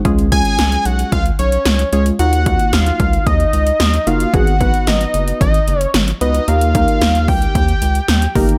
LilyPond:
<<
  \new Staff \with { instrumentName = "Analog synth lead" } { \time 4/4 \key dis \minor \tempo 4 = 112 r8 gis''4 fis''8 eis''8 cis''4 cis''8 | fis''4 eis''4 dis''4. eis''8 | fis''4 dis''4 dis''4 r8 dis''8 | eis''4. g''2 r8 | }
  \new Staff \with { instrumentName = "Synth keys" } { \time 4/4 \key dis \minor <gis cis' eis' gis'>8 <gis cis' eis' gis'>4. r4. <gis cis' eis' gis'>8 | <ais dis' eis' fis'>8 <ais dis' eis' fis'>4. r4. <ais dis' eis' fis'>8 | <b dis' fis' gis'>8 <b dis' fis' b'>4. r4. <b dis' fis' b'>8 | <ais dis' g' ais'>8 <ais dis' g' ais'>4. r4. <ais dis' g' ais'>8 | }
  \new Staff \with { instrumentName = "Analog synth bass" } { \clef bass \time 4/4 \key dis \minor cis,4 cis,8 b,,8 cis,8 b,,8 cis,8 cis,8 | dis,4 dis,8 cis,8 dis,8 cis,8 dis,8 fis,,8 | gis,,4 gis,,8 fis,,8 gis,,8 fis,,8 gis,,8 cis,8 | dis,4 dis,8 cis,8 dis,8 cis,8 dis,8 g,,8 | }
  \new DrumStaff \with { instrumentName = "Drums" } \drummode { \time 4/4 <hh bd>16 hh16 <hh bd>16 hh16 <hh sn>16 hh16 hh16 hh16 <hh bd>16 hh16 hh16 hh16 <hh sn>16 hh16 hh16 hh16 | hh16 hh16 <hh bd>16 hh16 <hh sn>16 hh16 <hh bd>16 hh16 <hh bd>16 hh16 hh16 hh16 <hh sn>16 hh16 hh16 hh16 | <hh bd>16 hh16 <hh bd>16 hh16 <hh sn>16 hh16 hh16 hh16 <hh bd>16 hh16 hh16 hh16 <hh sn>16 hh16 hh16 hh16 | hh16 hh16 <hh bd>16 hh16 <hh sn>16 hh16 <hho bd>16 hh16 <hh bd>16 hh16 hh16 hh16 <hh sn>16 hh16 <hho bd>16 hh16 | }
>>